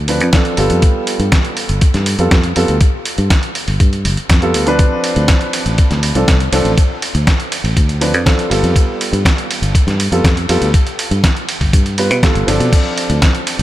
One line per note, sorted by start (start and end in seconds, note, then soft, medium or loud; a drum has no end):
0.00 0.21 D2 medium
0.08 0.26 F3 medium
0.08 0.26 C4 medium
0.08 0.26 D4 medium
0.08 0.26 B4 medium
0.08 open hi-hat loud
0.20 0.31 F2 medium
0.20 closed hi-hat medium
0.33 0.55 F3 medium
0.33 0.55 C4 medium
0.33 0.55 D4 medium
0.33 0.55 A4 medium
0.33 kick loud
0.33 snare loud
0.33 closed hi-hat medium
0.45 closed hi-hat soft
0.57 0.68 G1 medium
0.57 2.16 G3 medium
0.57 2.16 B3 medium
0.57 2.16 F4 medium
0.57 2.17 A4 medium
0.57 open hi-hat loud
0.70 0.80 F2 medium
0.70 closed hi-hat medium
0.82 kick loud
0.82 closed hi-hat medium
1.07 open hi-hat loud
1.20 1.30 G2 loud
1.20 closed hi-hat medium
1.32 kick loud
1.32 snare loud
1.32 closed hi-hat medium
1.45 closed hi-hat soft
1.57 open hi-hat loud
1.69 1.79 G1 medium
1.69 closed hi-hat medium
1.81 kick loud
1.81 closed hi-hat medium
1.94 2.14 G2 loud
1.94 snare soft
1.94 closed hi-hat soft
2.06 open hi-hat loud
2.19 2.29 F2 medium
2.19 2.37 G3 medium
2.19 2.37 B3 medium
2.19 2.37 F4 medium
2.19 2.37 A4 medium
2.19 closed hi-hat medium
2.31 2.51 F2 loud
2.31 kick loud
2.31 snare loud
2.31 closed hi-hat medium
2.43 closed hi-hat soft
2.56 2.66 F2 loud
2.56 2.74 G3 medium
2.56 2.74 B3 medium
2.56 2.74 F4 medium
2.56 2.74 A4 loud
2.56 open hi-hat loud
2.68 2.79 D2 medium
2.68 closed hi-hat medium
2.81 kick loud
2.81 closed hi-hat medium
3.05 open hi-hat loud
3.18 3.28 G2 loud
3.18 closed hi-hat soft
3.30 kick loud
3.30 snare loud
3.30 closed hi-hat medium
3.43 closed hi-hat soft
3.55 open hi-hat loud
3.68 3.78 G1 medium
3.68 open hi-hat medium
3.80 4.07 G2 medium
3.80 kick loud
3.80 closed hi-hat medium
3.93 closed hi-hat soft
4.05 4.15 G1 medium
4.05 open hi-hat loud
4.17 muted fingered electric bass stroke soft
4.17 closed hi-hat soft
4.29 4.54 F2 medium
4.29 kick loud
4.29 snare loud
4.29 closed hi-hat medium
4.42 4.64 G3 medium
4.42 4.64 B3 medium
4.42 4.64 F4 medium
4.42 4.64 A4 loud
4.42 closed hi-hat soft
4.54 4.88 D2 medium
4.54 open hi-hat loud
4.66 6.12 F3 loud
4.66 6.13 C4 medium
4.66 6.13 D4 medium
4.66 6.13 B4 loud
4.66 closed hi-hat medium
4.79 kick loud
4.79 closed hi-hat medium
5.04 open hi-hat loud
5.04 ride medium
5.16 5.26 D2 loud
5.16 closed hi-hat medium
5.28 kick loud
5.28 snare loud
5.28 closed hi-hat medium
5.41 closed hi-hat soft
5.53 open hi-hat loud
5.53 ride medium
5.66 5.76 A1 medium
5.66 closed hi-hat medium
5.78 kick loud
5.78 closed hi-hat medium
5.91 6.11 D2 loud
5.91 snare soft
5.91 closed hi-hat soft
6.03 open hi-hat loud
6.03 ride medium
6.15 6.25 C2 medium
6.15 6.33 F3 medium
6.15 6.33 C4 medium
6.15 6.33 D4 medium
6.15 6.34 A4 medium
6.15 closed hi-hat soft
6.28 6.48 C2 loud
6.28 kick loud
6.28 snare loud
6.28 closed hi-hat medium
6.40 closed hi-hat soft
6.52 6.63 C2 loud
6.52 6.70 F3 medium
6.52 6.71 C4 medium
6.52 6.71 D4 medium
6.52 6.71 A4 loud
6.52 open hi-hat loud
6.52 ride medium
6.65 6.75 A1 medium
6.65 closed hi-hat medium
6.78 kick loud
6.78 closed hi-hat medium
7.02 open hi-hat loud
7.02 ride medium
7.15 7.25 D2 loud
7.15 closed hi-hat medium
7.27 kick loud
7.27 snare loud
7.27 closed hi-hat medium
7.40 closed hi-hat soft
7.52 open hi-hat loud
7.52 ride medium
7.64 7.74 A1 medium
7.64 open hi-hat medium
7.77 8.14 D2 medium
7.77 kick loud
7.77 closed hi-hat medium
7.89 closed hi-hat soft
8.01 8.19 F3 medium
8.01 8.19 C4 medium
8.01 8.19 D4 medium
8.01 8.20 B4 medium
8.01 open hi-hat loud
8.01 ride medium
8.14 8.24 F2 medium
8.14 closed hi-hat medium
8.26 8.48 F3 medium
8.26 8.48 C4 medium
8.26 8.48 D4 medium
8.26 8.48 A4 medium
8.26 kick loud
8.26 snare loud
8.26 closed hi-hat medium
8.39 closed hi-hat soft
8.49 8.61 G1 medium
8.49 10.08 G3 medium
8.49 10.09 B3 medium
8.49 10.09 F4 medium
8.49 10.10 A4 loud
8.49 open hi-hat loud
8.49 ride medium
8.63 8.73 F2 medium
8.63 closed hi-hat medium
8.76 kick loud
8.76 closed hi-hat medium
9.01 open hi-hat loud
9.01 ride medium
9.13 9.23 G2 loud
9.13 closed hi-hat medium
9.25 kick loud
9.25 snare loud
9.25 closed hi-hat medium
9.38 closed hi-hat soft
9.51 open hi-hat loud
9.51 ride medium
9.62 9.72 G1 medium
9.62 closed hi-hat medium
9.75 muted fingered electric bass stroke soft
9.75 kick loud
9.75 closed hi-hat medium
9.87 10.07 G2 loud
9.87 snare soft
9.87 closed hi-hat soft
10.00 open hi-hat loud
10.00 ride medium
10.12 10.22 F2 medium
10.12 10.30 G3 medium
10.12 10.30 B3 medium
10.12 10.30 F4 medium
10.12 10.30 A4 medium
10.12 closed hi-hat medium
10.24 10.45 F2 loud
10.24 kick loud
10.24 snare loud
10.24 closed hi-hat medium
10.37 closed hi-hat soft
10.49 10.59 F2 loud
10.49 10.67 G3 medium
10.49 10.67 B3 medium
10.49 10.67 F4 medium
10.49 10.67 A4 loud
10.49 open hi-hat loud
10.49 ride medium
10.62 10.72 D2 medium
10.62 closed hi-hat medium
10.74 kick loud
10.74 closed hi-hat medium
10.87 closed hi-hat soft
10.99 open hi-hat loud
10.99 ride medium
11.11 11.21 G2 loud
11.11 closed hi-hat medium
11.24 kick loud
11.24 snare loud
11.24 closed hi-hat medium
11.37 closed hi-hat soft
11.49 open hi-hat loud
11.49 ride medium
11.61 11.71 G1 medium
11.61 kick medium
11.61 open hi-hat medium
11.73 12.11 G2 medium
11.73 kick loud
11.73 closed hi-hat medium
11.86 closed hi-hat soft
11.98 12.16 G3 medium
11.98 12.16 B3 medium
11.98 12.16 F4 medium
11.98 12.16 B4 medium
11.98 open hi-hat loud
11.98 ride medium
12.11 12.21 B2 medium
12.11 closed hi-hat medium
12.23 12.45 G3 medium
12.23 12.45 B3 medium
12.23 12.45 F4 medium
12.23 12.45 A4 medium
12.23 kick loud
12.23 snare loud
12.23 closed hi-hat medium
12.35 12.45 G1 medium
12.35 closed hi-hat soft
12.47 12.58 G1 medium
12.47 13.63 F3 medium
12.47 13.63 C4 medium
12.47 13.63 D4 medium
12.47 13.63 A4 medium
12.47 open hi-hat loud
12.47 ride medium
12.60 12.70 B2 loud
12.60 closed hi-hat medium
12.73 kick loud
12.73 closed hi-hat medium
12.73 crash medium
12.98 open hi-hat loud
12.98 ride medium
13.10 13.20 D2 loud
13.10 closed hi-hat medium
13.22 kick loud
13.22 snare loud
13.22 closed hi-hat medium
13.35 closed hi-hat soft
13.47 open hi-hat loud
13.47 ride medium
13.59 13.63 A1 medium
13.59 closed hi-hat medium